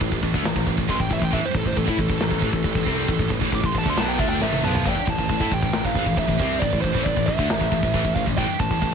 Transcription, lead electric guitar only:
0.90 C6
1.00 G5
1.13 E5
1.22 G5
1.33 E5
1.46 C5
1.57 A4
1.67 C5
1.78 A4
1.90 E4
2.01 A4
3.55 D6
3.66 C6
3.78 A5
3.90 C6
3.97 A5
4.08 G5
4.20 E5
4.29 G5
4.41 E5
4.64 F5 A5
4.89 G5
5.10 A5
5.54 G5
5.86 F5
6.19 E5
6.59 D5
6.81 C5
7.04 D5
7.26 E5
8.15 F5
8.38 G5
8.59 A5

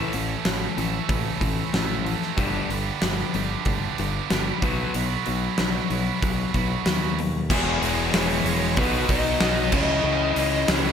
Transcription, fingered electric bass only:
0.14 A1
0.45 A1
0.78 A1
1.09 A1
1.41 A1
1.74 A1
2.38 G1
2.69 G1
3.02 G1
3.34 G1
3.65 G1
3.99 G1
4.31 G1
4.62 B1
4.95 B1
5.28 B1
5.60 B1
5.90 B1
6.23 B1
6.54 B1
6.86 D#2
7.50 E1
7.82 E1
8.14 E1
8.44 E1
8.78 B1
9.09 B1
9.41 B1
9.73 C#2
10.03 C#2
10.36 C#2
10.68 C#2

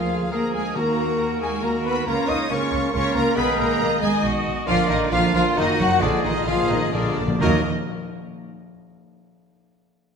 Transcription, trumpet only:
Already playing: G#4
0.32 G#4
0.76 F#4
1.64 F#4
2.07 F4
2.50 F4
2.93 F4
3.36 G#4
4.24 F#4
4.68 F4
5.12 F4
5.57 F#4
6.02 G#4
6.47 G#4
6.93 G#4
7.41 A#4

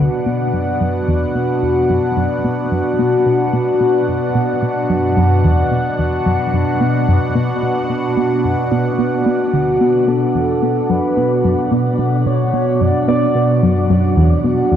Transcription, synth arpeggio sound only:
0.26 B2
0.53 F#2
0.81 F#2
1.08 E2
1.35 B2
1.63 E2
1.90 F#2
2.17 F#2
2.44 B2
2.72 F#2
2.99 B2
3.26 B2
3.53 B2
3.81 B2
4.08 F#2
4.35 B2
4.62 B2
4.90 F#2
5.17 F#2
5.44 E2
5.72 B2
5.99 E2
6.26 F#2
6.53 F#2
6.81 B2
7.08 F#2
7.35 B2
7.62 B2
7.90 B2
8.17 B2
8.44 F#2
8.72 B2
8.99 B2
9.26 B2
9.53 D2
9.81 B2
10.08 B2
10.35 E2
10.62 B2
10.90 F#2
11.17 B2
11.44 F#2
11.72 B2
11.99 B2
12.26 B2
12.54 B2
12.81 F#2
13.08 B2
13.35 B2
13.63 F#2
13.90 F#2
14.17 E2
14.44 B2
14.72 E2

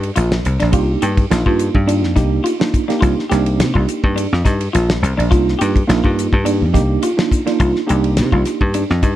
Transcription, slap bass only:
0.17 A#1
0.46 C2
0.62 A#1
0.73 C2
1.03 G2
1.31 A#1
1.46 G2
1.75 G2
2.04 F2
2.16 C2
3.02 C2
3.31 C2
3.59 C3
3.76 C2
4.04 G2
4.33 F2
4.46 G2
4.75 A#1
5.02 C2
5.18 A#1
5.32 C2
5.61 G2
5.89 A#1
6.05 G2
6.33 G2
6.61 F2
6.75 C2
7.60 C2
7.90 C2
8.19 C3
8.33 C2
8.61 G2
8.90 F2
9.03 G2

